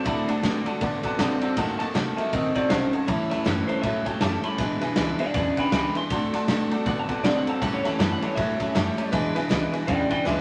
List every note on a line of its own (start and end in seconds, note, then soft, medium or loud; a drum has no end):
0.04 0.22 D2 loud
0.04 0.28 D3 medium
0.04 0.26 D3 medium
0.04 0.28 A3 medium
0.04 0.26 A3 loud
0.04 0.29 C4 medium
0.04 0.28 E4 medium
0.04 0.28 F#4 medium
0.04 0.27 A4 medium
0.04 0.20 D5 loud
0.04 0.20 F#5 medium
0.04 0.20 A5 loud
0.04 kick loud
0.04 ride medium
0.28 0.39 A2 medium
0.28 0.42 D3 medium
0.28 0.42 A3 medium
0.28 0.43 C4 medium
0.28 0.43 D4 loud
0.28 0.43 F#4 medium
0.28 0.43 A4 medium
0.28 0.38 D5 loud
0.28 0.38 F#5 medium
0.28 0.38 A5 loud
0.28 ride medium
0.43 0.59 B2 medium
0.43 0.66 D3 medium
0.43 0.64 D3 medium
0.43 0.66 A3 medium
0.43 0.64 A3 loud
0.43 0.67 C4 medium
0.43 0.66 F#4 medium
0.43 0.64 A4 medium
0.43 0.57 D5 medium
0.43 0.57 F#5 medium
0.43 0.58 A5 medium
0.43 snare loud
0.43 ride medium
0.65 0.80 D3 medium
0.65 0.80 A3 medium
0.65 0.81 C4 medium
0.65 0.82 F#4 medium
0.65 0.81 A4 medium
0.65 0.75 D5 medium
0.65 0.75 F#5 medium
0.65 0.75 A5 loud
0.65 muted upright bass stroke medium
0.65 ride medium
0.81 1.02 D3 medium
0.81 0.97 D3 loud
0.81 1.04 A3 medium
0.81 1.02 B3 medium
0.81 1.04 C4 medium
0.81 1.04 F#4 medium
0.81 1.02 A4 medium
0.81 0.95 D5 medium
0.81 0.95 F#5 medium
0.81 0.96 A5 loud
0.81 kick loud
0.81 ride medium
1.03 1.18 D3 medium
1.03 1.18 B3 medium
1.03 1.19 C4 medium
1.03 1.20 F#4 medium
1.03 1.19 A4 medium
1.03 1.13 D5 medium
1.03 1.13 F#5 medium
1.03 1.14 A5 medium
1.03 muted upright bass stroke medium
1.03 kick medium
1.03 ride medium
1.18 1.35 B2 medium
1.18 1.39 D3 medium
1.18 1.42 D3 medium
1.18 1.42 A3 medium
1.18 1.40 C4 loud
1.18 1.42 C4 loud
1.18 1.42 F#4 loud
1.18 1.40 A4 loud
1.18 1.32 D5 loud
1.18 1.33 F#5 loud
1.18 1.33 A5 loud
1.18 snare loud
1.18 ride medium
1.41 1.55 D3 medium
1.41 1.55 C4 medium
1.41 1.57 C4 medium
1.41 1.57 F#4 medium
1.41 1.57 A4 medium
1.41 1.51 D5 medium
1.41 1.51 F#5 medium
1.41 1.51 A5 loud
1.41 muted upright bass stroke medium
1.41 ride medium
1.57 1.73 D#2 loud
1.57 1.77 D#3 medium
1.57 1.80 D#3 loud
1.57 1.80 A3 medium
1.57 1.77 A#3 loud
1.57 1.80 C4 medium
1.57 1.80 F#4 loud
1.57 1.78 A4 loud
1.57 1.71 D#5 loud
1.57 1.71 F#5 loud
1.57 1.71 A5 loud
1.57 kick loud
1.57 ride loud
1.79 1.91 A2 medium
1.79 1.93 D#3 medium
1.79 1.93 A#3 medium
1.79 1.94 C4 soft
1.79 1.95 F#4 soft
1.79 1.95 A4 medium
1.79 1.88 D#5 loud
1.79 1.89 F#5 medium
1.79 2.16 A5 loud
1.79 1.89 A5 loud
1.79 snare soft
1.79 ride medium
1.94 2.11 C3 medium
1.94 2.17 D#3 medium
1.94 2.15 D#3 medium
1.94 2.17 A3 medium
1.94 2.15 A#3 loud
1.94 2.18 C4 medium
1.94 2.18 F#4 medium
1.94 2.16 A4 medium
1.94 2.08 D#5 medium
1.94 2.08 F#5 medium
1.94 2.08 A5 medium
1.94 snare loud
1.94 ride loud
2.16 2.31 D#3 medium
2.16 2.31 A#3 medium
2.16 2.32 C4 soft
2.16 2.33 F#4 soft
2.16 2.32 A4 medium
2.16 2.26 D#5 medium
2.16 2.33 E5 medium
2.16 2.26 F#5 medium
2.16 2.26 A5 medium
2.16 muted upright bass stroke medium
2.16 ride medium
2.31 2.53 D#3 medium
2.31 2.49 D#3 loud
2.31 2.55 A3 medium
2.31 2.53 C4 medium
2.31 2.56 C4 medium
2.31 2.55 F#4 medium
2.31 2.53 A4 medium
2.31 2.46 D#5 medium
2.31 2.55 D#5 loud
2.31 2.46 F#5 medium
2.31 2.46 A5 medium
2.31 kick loud
2.31 ride medium
2.54 2.69 D#3 medium
2.54 2.69 C4 loud
2.54 2.70 C4 soft
2.54 2.70 F#4 soft
2.54 2.70 A4 medium
2.54 2.70 D5 loud
2.54 2.64 D#5 medium
2.54 2.64 F#5 medium
2.54 2.65 A5 medium
2.54 muted upright bass stroke medium
2.54 kick medium
2.54 ride medium
2.69 2.86 B1 medium
2.69 2.93 D#3 medium
2.69 2.90 D#3 medium
2.69 2.93 A3 medium
2.69 2.93 C4 medium
2.69 2.91 C#4 medium
2.69 2.93 F#4 medium
2.69 2.91 A4 loud
2.69 2.93 C5 loud
2.69 2.84 D#5 medium
2.69 2.84 F#5 medium
2.69 2.84 A5 loud
2.69 snare loud
2.69 ride medium
2.92 3.06 D#3 medium
2.92 3.07 C4 soft
2.92 3.06 C#4 medium
2.92 3.08 F#4 soft
2.92 3.07 A4 medium
2.92 3.02 D#5 medium
2.92 3.02 F#5 medium
2.92 3.02 A5 medium
2.92 ride medium
3.07 3.24 A1 loud
3.07 3.30 A2 medium
3.07 3.28 A2 medium
3.07 3.30 E3 medium
3.07 3.28 E3 loud
3.07 3.31 G3 medium
3.07 3.30 C#4 medium
3.07 3.30 E4 loud
3.07 3.30 E4 medium
3.07 3.28 A4 medium
3.07 3.21 C#5 loud
3.07 3.22 E5 medium
3.07 3.22 A5 loud
3.07 kick loud
3.07 ride medium
3.30 3.41 E2 medium
3.30 3.44 A2 medium
3.30 3.44 E3 medium
3.30 3.44 G3 soft
3.30 3.44 C#4 soft
3.30 3.45 E4 medium
3.30 3.45 E4 loud
3.30 3.45 A4 medium
3.30 3.39 C#5 loud
3.30 3.40 E5 medium
3.30 3.40 A5 loud
3.30 snare soft
3.30 ride medium
3.44 3.62 F#2 medium
3.44 3.68 A2 medium
3.44 3.66 A2 medium
3.44 3.68 E3 medium
3.44 3.66 E3 medium
3.44 3.68 G3 medium
3.44 3.68 C#4 medium
3.44 3.67 E4 medium
3.44 3.66 A4 medium
3.44 3.59 C#5 medium
3.44 3.59 E5 medium
3.44 3.60 A5 medium
3.44 snare loud
3.44 ride medium
3.67 3.81 A2 medium
3.67 3.82 E3 medium
3.67 3.81 G3 soft
3.67 3.82 C#4 soft
3.67 3.83 E4 soft
3.67 3.83 A4 medium
3.67 3.82 C5 medium
3.67 3.77 C#5 medium
3.67 3.77 E5 medium
3.67 3.78 A5 medium
3.67 ride medium
3.82 4.04 A2 medium
3.82 4.00 A2 loud
3.82 4.04 F#3 medium
3.82 4.06 G3 medium
3.82 4.06 C#4 medium
3.82 4.05 E4 medium
3.82 4.04 A4 medium
3.82 3.97 C#5 medium
3.82 4.05 E5 medium
3.82 3.97 E5 medium
3.82 3.97 A5 medium
3.82 kick loud
3.82 ride medium
4.05 4.19 A2 medium
4.05 4.19 F#3 medium
4.05 4.21 G3 soft
4.05 4.21 C#4 soft
4.05 4.21 E4 soft
4.05 4.21 A4 medium
4.05 4.15 C#5 medium
4.05 4.15 E5 medium
4.05 4.20 G5 loud
4.05 4.15 A5 medium
4.05 muted upright bass stroke medium
4.05 kick medium
4.05 ride medium
4.21 4.37 F#2 medium
4.21 4.41 A2 medium
4.21 4.44 A2 medium
4.21 4.44 E3 medium
4.21 4.42 G3 medium
4.21 4.44 G3 medium
4.21 4.44 C#4 medium
4.21 4.44 E4 medium
4.21 4.43 A4 medium
4.21 4.35 C#5 loud
4.21 4.35 E5 medium
4.21 4.44 A5 medium
4.21 4.35 A5 loud
4.21 snare loud
4.21 ride medium
4.43 4.57 A2 medium
4.43 4.57 G3 medium
4.43 4.59 G3 soft
4.43 4.60 C#4 soft
4.43 4.59 E4 soft
4.43 4.59 A4 soft
4.43 4.53 C#5 medium
4.43 4.53 E5 medium
4.43 4.53 A5 medium
4.43 4.80 B5 loud
4.43 ride medium
4.58 4.75 E1 loud
4.58 4.79 E2 medium
4.58 4.80 B2 medium
4.58 4.82 E3 medium
4.58 4.82 G#3 medium
4.58 4.82 D4 medium
4.58 4.82 E4 loud
4.58 4.72 B4 loud
4.58 4.80 B4 medium
4.58 4.72 E5 medium
4.58 4.73 G#5 loud
4.58 kick loud
4.58 ride medium
4.81 4.92 B1 medium
4.81 4.95 E2 medium
4.81 4.95 B2 medium
4.81 4.97 D4 soft
4.81 4.97 E4 medium
4.81 4.90 B4 loud
4.81 4.97 B4 medium
4.81 4.91 E5 medium
4.81 4.91 G#5 loud
4.81 snare soft
4.81 ride medium
4.96 5.12 C#2 loud
4.96 5.17 E2 medium
4.96 5.17 B2 medium
4.96 5.20 E3 medium
4.96 5.20 G#3 medium
4.96 5.20 D4 loud
4.96 5.20 E4 loud
4.96 5.10 B4 medium
4.96 5.19 B4 medium
4.96 5.11 E5 medium
4.96 5.11 G#5 medium
4.96 snare loud
4.96 ride medium
5.19 5.33 E2 medium
5.19 5.33 B2 medium
5.19 5.35 E4 soft
5.19 5.28 B4 medium
5.19 5.35 B4 medium
5.19 5.33 D5 medium
5.19 5.29 E5 medium
5.19 5.34 F#5 medium
5.19 5.29 G#5 medium
5.19 ride medium
5.23 5.35 D4 soft
5.34 5.50 E2 loud
5.34 5.55 E2 medium
5.34 5.55 C#3 medium
5.34 5.57 G#3 medium
5.34 5.58 D4 medium
5.34 5.59 E4 medium
5.34 5.48 B4 medium
5.34 5.57 B4 medium
5.34 5.56 D5 medium
5.34 5.48 E5 medium
5.34 5.57 F#5 loud
5.34 5.49 G#5 medium
5.34 kick loud
5.34 ride medium
5.57 5.71 E2 medium
5.57 5.71 C#3 medium
5.57 5.73 D4 soft
5.57 5.73 E4 soft
5.57 5.66 B4 medium
5.57 5.73 B4 medium
5.57 5.66 E5 medium
5.57 5.72 G5 medium
5.57 5.67 G#5 medium
5.57 5.72 B5 loud
5.57 kick medium
5.57 ride medium
5.72 5.88 C#2 medium
5.72 5.93 E2 medium
5.72 5.93 D3 loud
5.72 5.95 E3 medium
5.72 5.95 G#3 medium
5.72 5.96 D4 medium
5.72 5.96 E4 medium
5.72 5.86 B4 medium
5.72 5.94 B4 medium
5.72 5.86 E5 medium
5.72 5.94 G5 medium
5.72 5.86 G#5 loud
5.72 5.95 B5 medium
5.72 snare loud
5.72 ride medium
5.95 6.09 E2 medium
5.95 6.09 D3 medium
5.95 6.11 D4 soft
5.95 6.11 E4 soft
5.95 6.10 B4 medium
5.95 6.04 B4 medium
5.95 6.04 E5 medium
5.95 6.05 G#5 medium
5.95 6.69 C6 loud
5.95 ride medium
6.10 6.26 D2 loud
6.10 6.33 D3 medium
6.10 6.31 D3 medium
6.10 6.33 A3 medium
6.10 6.31 A3 loud
6.10 6.33 C4 medium
6.10 6.34 F#4 medium
6.10 6.32 A4 medium
6.10 6.24 D5 loud
6.10 6.24 F#5 medium
6.10 6.25 A5 loud
6.10 kick loud
6.10 ride loud
6.33 6.43 A2 medium
6.33 6.46 D3 medium
6.33 6.46 A3 medium
6.33 6.49 C4 soft
6.33 6.49 F#4 medium
6.33 6.48 A4 medium
6.33 6.42 D5 loud
6.33 6.42 F#5 medium
6.33 6.42 A5 loud
6.33 snare soft
6.33 ride medium
6.48 6.64 B2 loud
6.48 6.68 D3 medium
6.48 6.71 D3 medium
6.48 6.69 A3 loud
6.48 6.72 A3 medium
6.48 6.72 C4 medium
6.48 6.72 F#4 loud
6.48 6.70 A4 loud
6.48 6.61 D5 medium
6.48 6.62 F#5 medium
6.48 6.62 A5 medium
6.48 snare loud
6.48 ride medium
6.70 6.84 D3 medium
6.70 6.84 A3 loud
6.70 6.87 F#4 medium
6.70 6.86 A4 medium
6.70 6.80 D5 loud
6.70 6.80 F#5 medium
6.70 6.80 A5 loud
6.70 muted upright bass stroke medium
6.70 ride medium
6.74 6.86 C4 medium
6.85 7.06 D3 medium
6.85 7.02 D3 loud
6.85 7.09 A3 medium
6.85 7.06 B3 loud
6.85 7.09 C4 medium
6.85 7.09 F#4 medium
6.85 7.07 A4 medium
6.85 6.99 D5 medium
6.85 7.00 F#5 medium
6.85 6.99 F#5 loud
6.85 7.00 A5 medium
6.85 kick loud
6.85 ride medium
6.99 7.12 A5 medium
7.08 7.22 D3 medium
7.08 7.22 B3 loud
7.08 7.24 C4 soft
7.08 7.24 F#4 medium
7.08 7.24 A4 medium
7.08 7.17 D5 medium
7.08 7.18 F#5 medium
7.08 7.18 A5 medium
7.08 kick medium
7.08 ride medium
7.12 7.24 F#5 medium
7.23 7.39 B2 loud
7.23 7.44 D3 medium
7.23 7.46 D3 medium
7.23 7.47 A3 medium
7.23 7.44 C4 medium
7.23 7.47 C4 medium
7.23 7.47 F#4 medium
7.23 7.46 A4 medium
7.23 7.36 D5 loud
7.23 7.37 D5 loud
7.23 7.37 F#5 medium
7.23 7.38 A5 loud
7.23 snare loud
7.23 ride medium
7.37 7.49 F#5 loud
7.46 7.60 D3 medium
7.46 7.60 C4 medium
7.46 7.63 C4 soft
7.46 7.62 F#4 soft
7.46 7.62 A4 medium
7.46 7.55 D5 medium
7.46 7.56 F#5 medium
7.46 7.56 A5 medium
7.46 7.61 A5 medium
7.46 muted upright bass stroke medium
7.46 ride medium
7.61 7.78 A1 loud
7.61 7.82 A2 medium
7.61 7.84 A2 medium
7.61 7.82 E3 medium
7.61 7.85 E3 medium
7.61 7.85 G3 medium
7.61 7.85 C#4 medium
7.61 7.85 G4 medium
7.61 7.83 A4 medium
7.61 7.75 C#5 loud
7.61 7.75 E5 medium
7.61 7.74 F#5 loud
7.61 7.75 A5 loud
7.61 kick loud
7.61 ride medium
7.74 7.86 C#5 loud
7.84 7.94 E2 medium
7.84 7.97 A2 medium
7.84 7.98 E3 medium
7.84 7.98 G3 soft
7.84 7.99 C#4 medium
7.84 7.99 G4 medium
7.84 7.99 A4 medium
7.84 7.93 C#5 loud
7.84 7.93 E5 medium
7.84 7.99 F#5 medium
7.84 7.93 A5 loud
7.84 snare soft
7.84 ride medium
7.99 8.15 F#2 loud
7.99 8.19 A2 medium
7.99 8.22 A2 medium
7.99 8.19 E3 loud
7.99 8.22 E3 medium
7.99 8.22 G3 medium
7.99 8.22 C#4 medium
7.99 8.21 G4 loud
7.99 8.20 A4 loud
7.99 8.12 C#5 medium
7.99 8.13 E5 medium
7.99 8.11 A5 medium
7.99 8.13 A5 medium
7.99 snare loud
7.99 ride medium
8.13 8.24 F#5 loud
8.21 8.35 A2 medium
8.21 8.35 E3 medium
8.21 8.35 G3 soft
8.21 8.36 C#4 soft
8.21 8.37 G4 medium
8.21 8.36 A4 medium
8.21 8.31 C#5 medium
8.21 8.36 C#5 medium
8.21 8.31 E5 medium
8.21 8.31 A5 medium
8.21 muted upright bass stroke medium
8.21 ride medium
8.35 8.57 A2 medium
8.35 8.53 A2 loud
8.35 8.58 F#3 loud
8.35 8.59 G3 medium
8.35 8.60 C#4 medium
8.35 8.59 G4 medium
8.35 8.58 A4 medium
8.35 8.50 C#5 medium
8.35 9.09 E5 loud
8.35 8.51 E5 medium
8.35 8.51 A5 medium
8.35 kick loud
8.35 ride medium
8.59 8.73 A2 medium
8.59 8.74 F#3 medium
8.59 8.74 G3 soft
8.59 8.75 C#4 medium
8.59 8.75 G4 soft
8.59 8.74 A4 medium
8.59 8.69 C#5 medium
8.59 8.69 E5 medium
8.59 8.69 A5 medium
8.59 muted upright bass stroke medium
8.59 kick medium
8.59 ride medium
8.74 8.91 F#2 loud
8.74 8.97 A2 medium
8.74 8.95 A2 medium
8.74 8.98 E3 medium
8.74 8.98 G3 medium
8.74 8.96 G3 medium
8.74 8.98 C#4 medium
8.74 8.97 G4 medium
8.74 8.96 A4 loud
8.74 8.88 C#5 loud
8.74 8.88 E5 medium
8.74 8.89 A5 loud
8.74 snare loud
8.74 ride loud
8.97 9.11 A2 medium
8.97 9.11 G3 medium
8.97 9.12 G3 medium
8.97 9.12 C#4 medium
8.97 9.13 G4 medium
8.97 9.12 A4 medium
8.97 9.06 C#5 medium
8.97 9.07 E5 medium
8.97 9.07 A5 loud
8.97 ride medium
9.12 9.29 E1 loud
9.12 9.33 E2 medium
9.12 9.33 B2 loud
9.12 9.35 E3 loud
9.12 9.35 G#3 medium
9.12 9.35 D4 loud
9.12 9.35 E4 loud
9.12 9.26 B4 loud
9.12 9.34 B4 loud
9.12 9.26 E5 loud
9.12 9.26 G#5 loud
9.12 kick loud
9.12 ride medium
9.35 9.46 B1 medium
9.35 9.49 E2 medium
9.35 9.49 B2 medium
9.35 9.49 D4 medium
9.35 9.49 E4 medium
9.35 9.49 B4 medium
9.35 9.44 B4 loud
9.35 9.44 E5 loud
9.35 9.44 G#5 loud
9.35 snare soft
9.35 ride medium
9.49 9.66 C#2 loud
9.49 9.71 E2 loud
9.49 9.71 B2 loud
9.49 9.72 E3 medium
9.49 9.72 G#3 loud
9.49 9.73 D4 loud
9.49 9.72 E4 loud
9.49 9.64 B4 medium
9.49 9.71 B4 loud
9.49 9.64 E5 medium
9.49 9.64 G#5 loud
9.49 snare loud
9.49 ride medium
9.72 9.86 E2 medium
9.72 9.87 B2 medium
9.72 9.87 D4 medium
9.72 9.88 E4 medium
9.72 9.87 B4 medium
9.72 9.82 B4 medium
9.72 9.82 E5 medium
9.72 9.82 G#5 loud
9.72 ride medium
9.87 10.08 E2 medium
9.87 10.04 E2 loud
9.87 10.09 C#3 loud
9.87 10.10 G#3 medium
9.87 10.11 D4 medium
9.87 10.11 E4 medium
9.87 10.01 B4 medium
9.87 10.09 B4 medium
9.87 10.09 D5 medium
9.87 10.01 E5 medium
9.87 10.09 G5 loud
9.87 10.02 G#5 medium
9.87 kick loud
9.87 ride medium
10.10 10.24 E2 medium
10.10 10.24 C#3 medium
10.10 10.25 D4 soft
10.10 10.26 E4 medium
10.10 10.20 B4 medium
10.10 10.26 B4 medium
10.10 10.25 D5 medium
10.10 10.20 E5 medium
10.10 10.26 G5 loud
10.10 10.20 G#5 medium
10.10 muted upright bass stroke medium
10.10 kick medium
10.10 ride medium
10.24 10.41 C#2 medium
10.24 10.41 E2 medium
10.24 10.41 D3 loud
10.24 10.41 E3 medium
10.24 10.41 G#3 medium
10.24 10.41 D4 medium
10.24 10.41 E4 medium
10.24 10.39 B4 loud
10.24 10.41 B4 medium
10.24 10.39 E5 medium
10.24 10.41 E5 medium
10.24 10.39 G#5 loud
10.24 snare medium